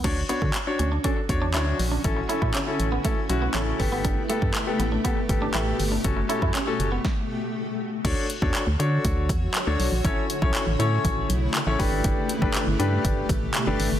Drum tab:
CC |x---------------|----------------|----------------|----------------|
HH |x-x-x-x-x-x-x-o-|x-x-x-x-x-x-x-o-|x-x-x-x-x-x-x-o-|x-x-x-x---------|
CP |----x-------x---|----x-------x---|----x-------x---|----x-----------|
SD |----------------|----------------|----------------|--------o-------|
BD |o--o----o-o-----|o--o----o-----o-|o--o----o-o-----|o--o----o-------|

CC |x---------------|----------------|----------------|
HH |x-x-x-x-x-x-x-o-|x-x-x-x-x-x-x-o-|x-x-x-x-x-x-x-o-|
CP |----x-------x---|----x-------x---|----x-------x---|
SD |----------------|----------------|----------------|
BD |o--o----o-o-----|o--o----o-----o-|o--o----o-o-----|